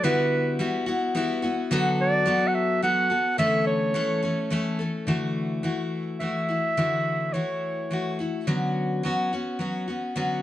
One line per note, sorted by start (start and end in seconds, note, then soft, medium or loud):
0.03 0.60 D3 medium
0.03 0.58 G3 medium
0.03 0.59 B3 medium
0.03 0.59 E4 medium
0.03 0.60 F#4 medium
0.03 0.60 B4 loud
0.59 0.87 G3 medium
0.59 0.87 B3 medium
0.59 0.87 E4 medium
0.59 0.85 F#4 medium
0.86 1.14 B3 soft
0.86 1.15 E4 medium
0.86 1.15 F#4 medium
1.15 1.43 G3 medium
1.15 1.43 B3 medium
1.15 1.42 E4 medium
1.15 1.41 F#4 medium
1.42 1.71 B3 soft
1.42 1.72 E4 medium
1.42 1.71 F#4 medium
1.71 2.27 D3 medium
1.71 2.24 F#3 medium
1.71 2.26 B3 medium
1.71 2.26 F#4 medium
1.71 2.27 A4 medium
2.01 2.49 D5 loud
2.26 2.81 F#3 medium
2.26 2.82 B3 medium
2.26 2.83 F#4 medium
2.26 2.84 A4 medium
2.48 2.56 F#5 medium
2.54 2.83 E5 loud
2.82 3.11 F#3 medium
2.82 3.11 B3 medium
2.82 3.10 F#4 medium
2.82 3.09 A4 medium
2.82 3.36 F#5 loud
3.10 3.39 B3 soft
3.10 3.39 F#4 soft
3.10 3.38 A4 soft
3.38 3.95 D3 medium
3.38 3.93 E3 medium
3.38 3.94 A3 medium
3.38 3.94 C#4 medium
3.38 3.95 A4 medium
3.38 3.65 E5 loud
3.67 4.76 C#5 medium
3.94 4.23 E3 medium
3.94 4.24 A3 medium
3.94 4.22 C#4 medium
3.94 4.21 A4 medium
4.23 4.50 A3 soft
4.23 4.51 C#4 soft
4.23 4.51 A4 medium
4.50 4.79 E3 medium
4.50 4.80 A3 medium
4.50 4.79 C#4 medium
4.50 4.78 A4 medium
4.79 5.07 A3 soft
4.79 5.07 C#4 soft
4.79 5.08 A4 medium
5.07 5.66 D3 medium
5.07 5.62 E3 medium
5.07 5.63 A3 medium
5.07 5.63 E4 medium
5.07 5.65 F#4 medium
5.63 6.19 E3 medium
5.63 6.20 A3 medium
5.63 6.20 E4 medium
5.63 6.22 F#4 medium
6.20 6.49 E3 soft
6.20 6.49 A3 soft
6.20 6.49 E4 soft
6.20 6.47 F#4 medium
6.20 7.34 E5 medium
6.49 6.76 A3 soft
6.49 6.77 E4 soft
6.49 6.77 F#4 soft
6.77 7.37 D3 medium
6.77 7.32 E3 medium
6.77 7.33 A3 medium
6.77 7.34 E4 medium
6.77 7.35 F#4 medium
7.33 7.89 E3 soft
7.33 7.90 A3 soft
7.33 7.91 E4 soft
7.33 7.93 F#4 medium
7.33 8.18 C#5 medium
7.91 8.19 E3 soft
7.91 8.19 A3 soft
7.91 8.19 E4 soft
7.91 8.18 F#4 medium
8.19 8.47 A3 soft
8.19 8.47 E4 soft
8.19 8.47 F#4 soft
8.47 9.08 D3 medium
8.47 9.03 F#3 medium
8.47 9.04 B3 medium
8.47 9.04 C#4 medium
8.47 9.06 F#4 medium
9.03 9.31 F#3 medium
9.03 9.32 B3 medium
9.03 9.32 C#4 medium
9.03 9.31 F#4 medium
9.33 9.59 B3 soft
9.33 9.60 C#4 soft
9.33 9.60 F#4 soft
9.59 9.87 F#3 medium
9.59 9.88 B3 medium
9.59 9.88 C#4 medium
9.59 9.86 F#4 medium
9.88 10.15 B3 soft
9.88 10.15 C#4 soft
9.88 10.16 F#4 soft
10.15 10.42 D3 medium
10.15 10.42 F#3 medium
10.15 10.42 B3 medium
10.15 10.42 C#4 medium
10.15 10.42 F#4 medium